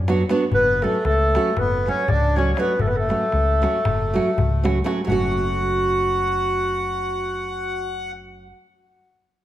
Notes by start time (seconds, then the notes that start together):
Already playing: F#2
0.08 F#3 B3 D4 F#4, darbuka tek
0.19 darbuka tek
0.29 F#3 B3 D4 F#4, darbuka tek
0.41 darbuka tek
0.52 F#1 B3 B4, darbuka dum
0.67 darbuka tek
0.82 F#3 A3 C#4 F#4 A4, darbuka tek
1.05 C#2 A3 A4, darbuka tek
1.21 darbuka tek
1.35 F#3 A3 C#4 F#4, darbuka tek
1.46 darbuka tek
1.57 F#1 B3 B4, darbuka tek, darbuka dum
1.71 darbuka tek
1.86 F#3 A3 C#4 F#4 C#5, darbuka tek
1.97 darbuka tek
2.08 C#2 D4 D5, darbuka dum
2.36 F#3 A3 C#4 F#4 C#5
2.46 darbuka tek
2.51 C#4 C#5
2.57 F#3 A3 B3 C#4 F#4 B4, darbuka tek
2.68 darbuka tek
2.79 F#1 A3 A4, darbuka dum
2.87 B3 B4
2.95 A3 A4, darbuka tek
3.09 F#3 A3 C#4 F#4, darbuka tek
3.22 darbuka tek
3.32 C#2, darbuka tek
3.48 darbuka tek
3.62 F#3 A3 C#4 F#4, darbuka tek
3.74 darbuka tek
3.85 F#1, darbuka tek, darbuka dum
4.01 darbuka tek
4.14 F#3 A3 C#4 F#4, darbuka tek
4.27 darbuka tek
4.38 C#2, darbuka dum
4.53 darbuka tek
4.64 F#3 A3 C#4 F#4, darbuka tek
4.76 darbuka tek
4.84 F#3 A3 C#4 F#4, darbuka tek
5.05 F#3 A3 F#5, darbuka dum
5.09 F#1 C#4 F#4